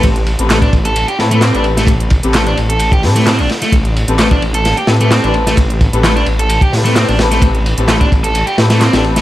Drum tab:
RD |x-x-x-xxx-x-x-x-|x-x-x-x-x---x-x-|x-x-x-x-x-x-x-x-|x-x-x-x-x---x-x-|
HH |xx-xxx-xxx-xxx-x|xx-xxx-xxxoxxx-x|xx-xxx-xxx-xxx-x|xx-xxx-xxxoxxx-x|
CP |----x-------x---|----x-------x---|----x-------x---|----x-------x---|
SD |----o-----o-o--o|----o-----o-o-oo|----o---o-o-o--o|----o-----o-o-oo|
BD |o----oo---------|o-o------o------|o----o----------|o-o------o------|

RD |x-x-x-xxx-xxxxx-|
HH |xx-xxx-xxx-xxx-x|
CP |----x-------x---|
SD |----o-----oooo-o|
BD |o----oo---------|